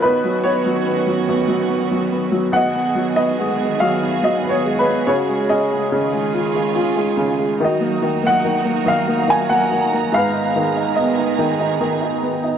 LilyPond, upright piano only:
<<
  \new Staff \with { instrumentName = "Upright piano" } { \time 3/4 \key gis \dorian \tempo 4 = 71 << { b'8 cis''2 r8 | fis''8. dis''8. eis''8 \tuplet 3/2 { dis''8 cis''8 b'8 } | cis''8 dis''2 r8 | dis''8. fis''8. eis''8 gis''16 fis''8. |
eis''4 dis''4 r4 | } \\ { dis'8 fis'2 r8 | dis''4. r4. | fis'8 gis'2 r8 | fis'4. r4. |
b'4. r4. | } >> }
  \new Staff \with { instrumentName = "Upright piano" } { \clef bass \time 3/4 \key gis \dorian b,16 fis16 b16 fis16 b16 fis16 b,16 fis16 b16 fis16 b16 fis16 | b,16 b16 fis16 b16 gis16 b16 fis16 b16 fis16 b16 gis16 b16 | cis16 gis16 cis'16 gis16 cis16 gis16 eis'16 gis16 eis'16 gis16 cis16 gis16 | dis16 ais16 dis16 ais16 dis16 ais16 dis16 ais16 dis16 ais16 dis16 ais16 |
gis,16 dis'16 dis16 dis'16 b16 dis'16 dis16 dis'16 dis16 dis'16 b16 dis'16 | }
>>